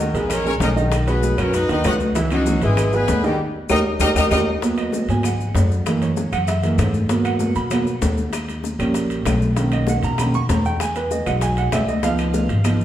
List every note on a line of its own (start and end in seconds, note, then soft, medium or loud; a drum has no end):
0.00 0.13 A#3 medium
0.00 0.14 F#4 medium
0.00 0.13 A#4 medium
0.14 0.57 A#1 medium
0.14 0.27 G#3 medium
0.14 0.31 B3 medium
0.14 0.28 G#4 medium
0.14 0.31 G#4 medium
0.14 0.27 A#4 medium
0.14 0.31 B4 medium
0.14 high conga soft
0.14 high timbale medium
0.14 maracas soft
0.29 0.42 G#3 medium
0.29 0.45 C#4 medium
0.29 0.42 G#4 medium
0.29 0.43 A#4 medium
0.29 0.45 A#4 medium
0.29 0.45 C#5 loud
0.29 high bongo medium
0.29 high conga soft
0.29 low conga medium
0.29 high timbale loud
0.29 claves medium
0.29 maracas medium
0.45 0.71 G#3 medium
0.45 0.53 C#4 medium
0.45 0.71 G#4 medium
0.45 0.53 A#4 medium
0.45 0.72 A#4 medium
0.45 0.53 C#5 loud
0.45 high conga soft
0.45 low conga medium
0.45 maracas soft
0.60 1.32 B1 medium
0.60 0.69 D#4 medium
0.60 0.68 A#4 medium
0.60 0.69 D#5 medium
0.60 high bongo medium
0.60 low bongo medium
0.60 high conga medium
0.60 high timbale medium
0.60 low timbale medium
0.60 maracas medium
0.76 1.02 D#3 medium
0.76 1.02 D#4 loud
0.76 1.02 D#5 medium
0.76 high conga soft
0.76 maracas soft
0.91 high bongo medium
0.91 high conga soft
0.91 high timbale medium
0.91 claves medium
0.91 maracas medium
1.07 1.32 F#3 medium
1.07 1.36 B3 medium
1.07 1.33 F#4 medium
1.07 1.37 G#4 medium
1.07 1.33 B4 medium
1.07 1.36 B4 medium
1.07 high bongo soft
1.07 high conga soft
1.07 high timbale medium
1.07 maracas soft
1.22 high bongo medium
1.22 high conga medium
1.22 low timbale medium
1.22 maracas medium
1.38 1.67 F#2 medium
1.38 1.63 F#3 medium
1.38 1.54 C#4 medium
1.38 1.63 F#4 medium
1.38 1.55 A#4 medium
1.38 1.64 B4 medium
1.38 1.54 C#5 medium
1.38 high conga soft
1.38 high timbale loud
1.38 claves medium
1.38 maracas soft
1.54 1.69 D#4 medium
1.54 1.69 B4 medium
1.54 1.69 D#5 medium
1.54 high bongo medium
1.54 high conga soft
1.54 high timbale medium
1.54 maracas medium
1.69 1.84 D#2 medium
1.69 1.82 D#3 medium
1.69 1.82 D#4 medium
1.69 1.85 D#4 medium
1.69 1.84 B4 medium
1.69 1.82 D#5 medium
1.69 1.85 D#5 medium
1.69 high bongo soft
1.69 high conga soft
1.69 high timbale medium
1.69 maracas soft
1.84 2.56 C#2 medium
1.84 2.10 F#3 medium
1.84 2.10 F#4 medium
1.84 1.94 F#4 medium
1.84 2.10 B4 medium
1.84 1.93 D#5 medium
1.84 1.94 F#5 loud
1.84 high bongo medium
1.84 low bongo medium
1.84 high conga medium
1.84 high timbale loud
1.84 low timbale medium
1.84 claves medium
1.84 maracas medium
2.00 high conga medium
2.00 maracas soft
2.15 2.28 E3 medium
2.15 2.28 E4 medium
2.15 2.28 E5 medium
2.15 high bongo medium
2.15 high timbale medium
2.15 maracas medium
2.30 2.57 E3 medium
2.30 2.61 F#3 medium
2.30 2.57 C#4 medium
2.30 2.60 D#4 medium
2.30 2.61 F#4 medium
2.30 2.57 C#5 medium
2.30 high conga soft
2.30 high timbale medium
2.30 claves medium
2.30 maracas soft
2.46 high bongo medium
2.46 high conga loud
2.46 low timbale medium
2.46 maracas medium
2.62 3.05 G#1 medium
2.62 2.75 G#3 medium
2.62 2.91 G#3 medium
2.62 2.91 E4 medium
2.62 2.75 G#4 medium
2.62 2.91 G#4 medium
2.62 2.75 B4 medium
2.62 high conga soft
2.62 high timbale medium
2.62 maracas soft
2.77 2.91 G#3 medium
2.77 2.91 G#4 medium
2.77 2.91 B4 medium
2.77 high bongo medium
2.77 high conga soft
2.77 low conga medium
2.77 high timbale loud
2.77 claves medium
2.77 maracas medium
2.92 3.19 G#3 medium
2.92 3.24 B3 loud
2.92 3.19 G#4 medium
2.92 3.24 G#4 medium
2.92 3.19 B4 medium
2.92 3.24 B4 loud
2.92 high conga soft
2.92 maracas soft
3.08 3.37 D#2 medium
3.08 high bongo medium
3.08 low bongo medium
3.08 high conga medium
3.08 high timbale medium
3.08 low timbale medium
3.08 maracas medium
3.23 3.36 D#3 medium
3.23 3.39 G3 medium
3.23 3.37 D#4 medium
3.23 3.39 D#4 medium
3.23 3.39 G4 medium
3.23 3.37 D#5 medium
3.23 high conga soft
3.23 maracas soft
3.69 3.81 D#2 medium
3.69 3.80 D#4 loud
3.69 3.78 D#4 loud
3.69 3.77 G4 medium
3.69 3.80 G4 loud
3.69 3.78 A#4 medium
3.69 3.80 A#4 loud
3.69 3.78 D#5 loud
3.69 high bongo medium
3.69 high conga loud
3.69 high timbale loud
3.69 claves loud
3.69 maracas medium
4.00 4.12 D#2 loud
4.00 4.11 D#4 loud
4.00 4.09 D#4 loud
4.00 4.08 G4 loud
4.00 4.11 G4 medium
4.00 4.11 A#4 loud
4.00 4.08 A#4 loud
4.00 4.09 D#5 loud
4.00 high bongo medium
4.00 high conga loud
4.00 high timbale loud
4.00 claves loud
4.00 maracas loud
4.15 4.27 D#2 medium
4.15 4.25 D#4 loud
4.15 4.27 D#4 medium
4.15 4.27 G4 loud
4.15 4.25 G4 medium
4.15 4.24 A#4 loud
4.15 4.27 A#4 medium
4.15 4.25 D#5 loud
4.15 high bongo loud
4.15 high conga loud
4.15 high timbale loud
4.15 claves loud
4.15 maracas medium
4.31 4.43 D#2 loud
4.31 4.38 D#4 medium
4.31 4.41 D#4 loud
4.31 4.39 G4 loud
4.31 4.41 G4 loud
4.31 4.39 A#4 loud
4.31 4.42 A#4 medium
4.31 4.38 D#5 loud
4.31 high bongo loud
4.31 high conga loud
4.31 high timbale loud
4.31 claves loud
4.31 maracas loud
4.62 5.08 F#3 medium
4.62 5.09 A#3 soft
4.62 5.09 B3 medium
4.62 high bongo medium
4.62 high conga soft
4.62 high timbale medium
4.62 maracas medium
4.77 5.07 D#5 medium
4.77 high conga soft
4.77 high timbale medium
4.77 claves medium
4.77 maracas soft
4.92 high bongo medium
4.92 high conga medium
4.92 low timbale medium
4.92 maracas medium
5.08 5.52 G#2 medium
5.08 5.23 F#3 soft
5.08 5.24 A#3 soft
5.08 5.24 B3 medium
5.08 5.24 G#5 medium
5.08 high conga soft
5.08 high timbale medium
5.08 maracas soft
5.23 5.68 F#5 medium
5.23 high bongo medium
5.23 high conga soft
5.23 low conga medium
5.23 high timbale medium
5.23 claves medium
5.23 maracas medium
5.40 high conga soft
5.40 low conga medium
5.40 maracas soft
5.55 6.27 F#2 medium
5.55 high bongo medium
5.55 low bongo medium
5.55 high conga medium
5.55 high timbale medium
5.55 low timbale medium
5.55 maracas medium
5.71 high conga soft
5.71 maracas soft
5.86 6.07 E3 medium
5.86 6.07 G#3 soft
5.86 6.07 A#3 medium
5.86 high bongo medium
5.86 high conga soft
5.86 high timbale medium
5.86 claves medium
5.86 maracas medium
6.01 6.30 C#5 medium
6.01 high bongo soft
6.01 high conga soft
6.01 high timbale medium
6.01 maracas soft
6.16 high bongo medium
6.16 high conga medium
6.16 low timbale medium
6.16 maracas medium
6.32 6.75 F#2 medium
6.32 6.47 F#5 loud
6.32 high bongo soft
6.32 high conga soft
6.32 high timbale loud
6.32 claves medium
6.32 maracas soft
6.47 6.91 E5 medium
6.47 high bongo medium
6.47 high conga soft
6.47 high timbale medium
6.47 maracas medium
6.63 6.77 E3 medium
6.63 6.77 G#3 soft
6.63 6.78 A#3 medium
6.63 high bongo soft
6.63 high conga soft
6.63 high timbale medium
6.63 maracas soft
6.78 7.50 G#2 medium
6.78 high bongo medium
6.78 low bongo medium
6.78 high conga medium
6.78 high timbale medium
6.78 low timbale medium
6.78 claves medium
6.78 maracas medium
6.93 high conga medium
6.93 maracas soft
7.09 7.70 F#3 medium
7.09 7.70 A#3 medium
7.09 7.70 B3 medium
7.09 high bongo medium
7.09 high conga soft
7.09 high timbale medium
7.09 maracas medium
7.24 7.54 F#5 medium
7.24 high conga soft
7.24 high timbale medium
7.24 claves medium
7.24 maracas soft
7.39 high bongo medium
7.39 high conga medium
7.39 low timbale medium
7.39 maracas medium
7.55 7.99 B2 medium
7.55 7.71 B5 loud
7.55 high conga soft
7.55 high timbale medium
7.55 maracas soft
7.71 7.85 F#3 soft
7.71 7.85 A#3 soft
7.71 7.86 B3 medium
7.71 8.15 F#5 medium
7.71 high bongo medium
7.71 high conga soft
7.71 low conga medium
7.71 high timbale loud
7.71 claves medium
7.71 maracas medium
7.86 high conga soft
7.86 maracas soft
8.01 8.74 D#2 medium
8.01 high bongo medium
8.01 low bongo medium
8.01 high conga medium
8.01 high timbale medium
8.01 low timbale medium
8.01 maracas medium
8.17 high conga soft
8.17 maracas soft
8.33 high bongo medium
8.33 high conga soft
8.33 high timbale medium
8.33 claves medium
8.33 maracas medium
8.48 high bongo soft
8.48 high conga soft
8.48 high timbale medium
8.48 maracas soft
8.63 high bongo medium
8.63 high conga medium
8.63 low timbale medium
8.63 maracas medium
8.79 9.22 A#1 medium
8.79 9.23 G3 medium
8.79 9.23 A#3 soft
8.79 9.24 C#4 medium
8.79 high bongo soft
8.79 high timbale loud
8.79 claves medium
8.79 maracas soft
8.94 high bongo medium
8.94 high conga soft
8.94 high timbale medium
8.94 maracas medium
9.10 high bongo soft
9.10 high conga soft
9.10 high timbale medium
9.10 maracas soft
9.25 9.97 B1 loud
9.25 high bongo medium
9.25 low bongo medium
9.25 high conga medium
9.25 high timbale loud
9.25 low timbale medium
9.25 claves medium
9.25 maracas medium
9.41 high conga medium
9.41 maracas soft
9.56 10.18 D#3 medium
9.56 10.19 A#3 soft
9.56 10.19 C#4 medium
9.56 high bongo medium
9.56 high conga soft
9.56 high timbale medium
9.56 maracas medium
9.72 9.88 D#5 medium
9.72 high conga soft
9.72 high timbale medium
9.72 claves medium
9.72 maracas soft
9.87 10.03 F#5 medium
9.87 high bongo medium
9.87 high conga loud
9.87 low timbale medium
9.87 maracas medium
10.03 10.46 B2 medium
10.03 10.19 A#5 loud
10.03 high conga soft
10.03 high timbale medium
10.03 maracas soft
10.18 10.33 D#3 soft
10.18 10.33 A#3 soft
10.18 10.33 C#4 medium
10.18 10.34 B5 medium
10.18 high bongo medium
10.18 high conga soft
10.18 low conga medium
10.18 high timbale loud
10.18 claves medium
10.18 maracas medium
10.34 10.49 C#6 loud
10.34 high conga soft
10.34 maracas soft
10.49 11.21 E2 medium
10.49 10.65 A#5 medium
10.49 high bongo medium
10.49 low bongo medium
10.49 high conga medium
10.49 high timbale medium
10.49 low timbale medium
10.49 maracas medium
10.64 10.80 G5 medium
10.64 high conga soft
10.64 maracas soft
10.80 10.96 G#5 loud
10.80 high bongo medium
10.80 high conga soft
10.80 high timbale medium
10.80 claves medium
10.80 maracas medium
10.95 11.11 B4 medium
10.95 high bongo soft
10.95 high conga soft
10.95 high timbale medium
10.95 maracas soft
11.11 11.26 D#5 medium
11.11 high bongo medium
11.11 high conga medium
11.11 low timbale medium
11.11 maracas medium
11.26 11.69 B1 medium
11.26 11.70 F#3 medium
11.26 11.71 G#3 medium
11.26 11.71 D#4 medium
11.26 11.41 F#5 medium
11.26 high bongo soft
11.26 high conga soft
11.26 high timbale medium
11.26 claves medium
11.26 maracas soft
11.41 11.57 G#5 loud
11.41 high bongo medium
11.41 high conga soft
11.41 high timbale medium
11.41 maracas medium
11.57 11.73 F#5 medium
11.57 high bongo soft
11.57 high timbale medium
11.57 maracas soft
11.72 12.44 C#2 medium
11.72 11.88 E5 medium
11.72 high bongo medium
11.72 low bongo medium
11.72 high conga medium
11.72 high timbale loud
11.72 low timbale medium
11.72 claves medium
11.72 maracas medium
11.88 12.03 D#5 medium
11.88 high conga medium
11.88 maracas soft
12.03 12.47 F3 medium
12.03 12.47 B3 medium
12.03 12.48 D#4 medium
12.03 12.85 F5 medium
12.03 high bongo medium
12.03 high conga soft
12.03 high timbale medium
12.03 maracas medium
12.18 high conga soft
12.18 high timbale medium
12.18 claves medium
12.18 maracas soft
12.34 high bongo medium
12.34 high conga loud
12.34 low timbale medium
12.34 maracas medium
12.49 12.85 G#1 medium
12.49 high conga soft
12.49 high timbale medium
12.49 maracas soft
12.64 12.79 F3 soft
12.64 12.79 B3 soft
12.64 12.79 D#4 soft
12.64 high bongo medium
12.64 high conga soft
12.64 low conga medium
12.64 high timbale loud
12.64 claves medium
12.64 maracas medium
12.81 high conga soft
12.81 maracas soft